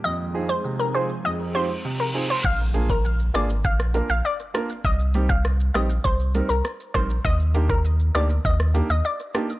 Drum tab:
CC |----------------|x---------------|----------------|----------------|
HH |----------------|--x---x---x---x-|--x---x---x---x-|--x---x---x---x-|
SH |----------------|xxxxxxxxxxxxxxxx|xxxxxxxxxxxxxxxx|xxxxxxxxxxxxxxxx|
SD |----------------|------r--r----r-|----r-r-----r-r-|------r--r----r-|
BD |----------------|o--o----o-------|o--o----o-----o-|o--o----o-------|